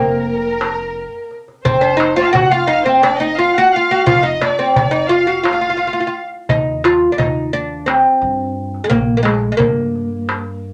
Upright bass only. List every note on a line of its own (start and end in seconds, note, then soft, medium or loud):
0.00 1.04 F1 medium
1.65 2.21 F1 medium
2.34 3.46 F1 medium
4.07 4.35 F1 medium
4.76 5.88 F1 medium
6.50 7.05 D#2 medium
7.18 8.02 D#2 medium
8.22 8.78 G2 medium
8.91 9.47 A#1 medium
9.60 10.72 G2 medium